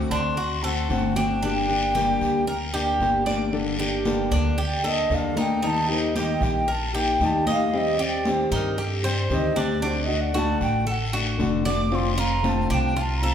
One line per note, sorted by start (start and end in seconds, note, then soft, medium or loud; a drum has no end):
0.00 0.36 D3 medium
0.00 0.36 A3 medium
0.00 0.37 C4 medium
0.00 0.37 F#4 medium
0.10 0.86 D2 loud
0.10 0.37 D4 medium
0.10 0.64 C6 loud
0.10 short guiro medium
0.37 0.63 F#4 medium
0.37 muted steel-string acoustic guitar stroke medium
0.37 high conga soft
0.37 long guiro medium
0.63 0.89 A3 soft
0.63 0.89 C4 soft
0.63 0.89 F#4 soft
0.63 1.15 A4 medium
0.63 1.17 F#5 medium
0.63 high conga soft
0.89 2.15 G1 medium
0.89 1.15 D3 medium
0.89 1.15 A3 medium
0.89 1.16 C4 medium
0.89 1.15 F#4 medium
0.89 high conga medium
0.89 short guiro medium
1.16 1.43 A3 soft
1.16 1.42 C4 soft
1.16 1.41 D4 medium
1.16 1.41 F#4 soft
1.16 3.00 G5 loud
1.16 high conga medium
1.16 short guiro medium
1.43 1.68 D3 medium
1.43 1.68 G3 medium
1.43 1.69 A#3 medium
1.43 1.94 D4 medium
1.43 1.69 D4 medium
1.43 1.68 G4 medium
1.43 long guiro medium
1.69 1.95 A#3 soft
1.69 1.95 D4 soft
1.69 1.94 G4 soft
1.69 high conga soft
1.94 2.46 D3 medium
1.94 2.46 G3 medium
1.94 2.47 A#3 medium
1.94 2.47 D4 medium
1.94 2.46 G4 medium
1.94 2.47 G4 medium
1.94 high conga medium
1.94 short guiro medium
2.21 2.96 D2 medium
2.21 short guiro medium
2.47 2.73 A#4 medium
2.47 muted steel-string acoustic guitar stroke medium
2.47 high conga soft
2.47 long guiro medium
2.73 3.00 A#3 soft
2.73 3.00 D4 soft
2.73 2.99 G4 soft
2.73 3.25 G4 medium
2.73 high conga soft
3.00 4.25 G1 medium
3.00 3.25 D3 medium
3.00 3.26 G3 medium
3.00 3.26 A#3 medium
3.00 3.26 D4 medium
3.00 3.25 G4 medium
3.00 high conga soft
3.00 short guiro medium
3.26 3.52 A#3 soft
3.26 3.52 D4 soft
3.26 3.51 G4 medium
3.26 3.52 D5 medium
3.26 high conga medium
3.26 short guiro medium
3.52 3.78 D3 medium
3.52 3.78 G3 medium
3.52 3.78 A#3 medium
3.52 3.78 D4 medium
3.52 3.78 A4 medium
3.52 long guiro medium
3.79 4.05 A#3 soft
3.79 4.05 D4 soft
3.79 4.30 G4 medium
3.79 4.04 A4 soft
3.79 high conga soft
4.05 4.57 D3 medium
4.05 4.57 G3 medium
4.05 4.57 A#3 medium
4.05 4.57 D4 medium
4.05 4.58 A4 medium
4.05 high conga loud
4.05 short guiro medium
4.31 5.06 D2 medium
4.31 4.57 D4 medium
4.31 high conga soft
4.31 short guiro medium
4.58 4.83 G4 medium
4.58 4.84 D5 medium
4.58 muted steel-string acoustic guitar stroke medium
4.58 high conga soft
4.58 long guiro medium
4.84 5.09 A#3 soft
4.84 5.10 D4 soft
4.84 5.09 A4 soft
4.84 5.35 A4 medium
4.84 5.16 D#5 medium
4.84 high conga soft
5.09 6.35 D#2 medium
5.09 5.35 D3 medium
5.09 5.36 G3 medium
5.09 5.36 A#3 medium
5.09 5.36 D4 medium
5.09 5.35 A4 medium
5.09 high conga soft
5.09 short guiro medium
5.14 5.38 F5 medium
5.36 5.62 A#3 soft
5.36 5.62 D4 soft
5.36 5.61 D#4 medium
5.36 5.62 A4 medium
5.36 5.68 G5 medium
5.36 high conga medium
5.36 short guiro medium
5.62 5.88 D#3 medium
5.62 5.88 G3 medium
5.62 5.88 A#3 medium
5.62 6.14 D#4 medium
5.62 5.89 D#4 medium
5.62 5.88 G4 medium
5.62 5.91 A5 loud
5.62 high conga soft
5.62 long guiro medium
5.89 6.15 A#3 soft
5.89 6.15 D#4 soft
5.89 6.14 G4 medium
5.89 6.21 C5 soft
6.15 6.67 D#3 medium
6.15 6.67 G3 medium
6.15 6.67 A#3 medium
6.15 6.68 D#4 medium
6.15 6.67 G4 medium
6.15 6.68 G4 medium
6.15 high conga medium
6.15 short guiro medium
6.19 6.45 D#5 medium
6.41 7.16 A#1 medium
6.41 6.73 G5 medium
6.41 high conga soft
6.41 short guiro medium
6.68 6.93 A#4 medium
6.68 6.95 A5 medium
6.68 muted steel-string acoustic guitar stroke medium
6.68 high conga soft
6.68 long guiro medium
6.94 7.20 A#3 soft
6.94 7.20 D#4 soft
6.94 7.19 G4 soft
6.94 7.45 G4 medium
6.94 7.26 G5 medium
6.94 high conga soft
7.20 8.45 D#2 medium
7.20 7.45 D#3 medium
7.20 7.46 G3 medium
7.20 7.46 A#3 medium
7.20 7.46 D#4 medium
7.20 7.46 G4 medium
7.20 high conga medium
7.20 short guiro medium
7.25 7.49 A5 medium
7.47 7.73 A#3 soft
7.47 7.72 D#4 soft
7.47 7.72 G4 soft
7.47 7.98 D#5 medium
7.47 7.79 F5 medium
7.47 high conga medium
7.47 short guiro medium
7.72 7.98 D#3 medium
7.72 7.98 G3 medium
7.72 7.99 C4 medium
7.72 7.98 G4 medium
7.72 high conga soft
7.72 long guiro medium
7.78 8.03 D#5 medium
7.99 8.25 G3 soft
7.99 8.25 C4 soft
7.99 8.50 G4 medium
7.99 8.24 G4 soft
7.99 8.31 D5 medium
7.99 high conga soft
8.25 8.76 D#3 medium
8.25 8.77 G3 medium
8.25 8.77 C4 medium
8.25 8.77 G4 medium
8.25 8.53 C5 medium
8.25 high conga loud
8.25 short guiro medium
8.51 9.26 G2 medium
8.51 8.77 D#4 medium
8.51 8.83 A#4 medium
8.51 high conga soft
8.51 short guiro medium
8.78 9.03 G4 medium
8.78 9.07 A4 medium
8.78 muted steel-string acoustic guitar stroke medium
8.78 high conga soft
8.78 long guiro medium
9.03 9.29 G3 soft
9.03 9.29 C4 soft
9.03 9.29 G4 soft
9.03 9.55 C5 medium
9.03 9.35 C5 medium
9.03 high conga soft
9.29 10.54 D2 medium
9.29 9.55 D#3 medium
9.29 9.55 G3 medium
9.29 9.55 C4 medium
9.29 9.54 G4 medium
9.29 high conga soft
9.29 short guiro medium
9.34 9.60 D#5 medium
9.55 9.82 G3 soft
9.55 9.81 C4 soft
9.55 9.81 D4 medium
9.55 9.81 G4 medium
9.55 9.88 D5 medium
9.55 high conga medium
9.55 short guiro medium
9.82 10.07 D3 medium
9.82 10.08 A3 medium
9.82 10.33 D4 medium
9.82 10.08 D4 medium
9.82 10.07 F#4 medium
9.82 long guiro medium
9.87 10.05 C5 medium
10.04 10.22 D#5 medium
10.08 10.33 A3 soft
10.08 10.34 D4 soft
10.08 10.34 F#4 soft
10.08 high conga soft
10.21 10.39 F#5 medium
10.34 10.85 D3 medium
10.34 10.86 A3 medium
10.34 10.86 D4 medium
10.34 10.85 F#4 medium
10.34 10.87 F#4 medium
10.34 10.61 A5 loud
10.34 high conga loud
10.34 short guiro medium
10.61 11.35 A1 medium
10.61 10.86 G5 medium
10.61 high conga soft
10.61 short guiro medium
10.87 11.12 A4 medium
10.87 11.05 F#5 medium
10.87 muted steel-string acoustic guitar stroke medium
10.87 high conga soft
10.87 long guiro medium
11.13 11.38 A3 soft
11.13 11.39 D4 soft
11.13 11.64 F#4 medium
11.13 11.39 F#4 soft
11.13 high conga soft
11.38 12.64 F1 medium
11.38 11.64 D3 medium
11.38 11.65 A3 medium
11.38 11.65 D4 medium
11.38 11.64 F#4 medium
11.38 high conga medium
11.38 short guiro medium
11.65 11.90 A3 soft
11.65 11.91 D4 soft
11.65 11.91 F#4 soft
11.65 12.16 D5 medium
11.65 11.96 D6 loud
11.65 high conga medium
11.65 short guiro medium
11.91 12.16 D3 medium
11.91 12.17 A3 medium
11.91 12.17 C4 medium
11.91 12.15 F4 medium
11.91 long guiro medium
11.95 12.21 C6 medium
12.17 12.42 A3 soft
12.17 12.43 C4 soft
12.17 12.43 F4 soft
12.17 12.69 F4 medium
12.17 12.50 A#5 medium
12.17 high conga soft
12.43 12.95 D3 medium
12.43 12.95 A3 medium
12.43 12.95 C4 medium
12.43 12.95 F4 medium
12.43 high conga loud
12.43 short guiro medium
12.48 12.71 A5 medium
12.70 13.34 C2 medium
12.70 12.96 D4 medium
12.70 13.02 G5 medium
12.70 high conga soft
12.70 short guiro medium
12.96 13.22 F4 medium
12.96 muted steel-string acoustic guitar stroke medium
12.96 high conga soft
12.96 long guiro medium
13.01 13.19 A5 medium
13.18 13.34 A#5 loud
13.22 13.34 A3 soft
13.22 13.34 C4 soft
13.22 13.34 F4 soft
13.22 13.34 A4 medium
13.22 high conga soft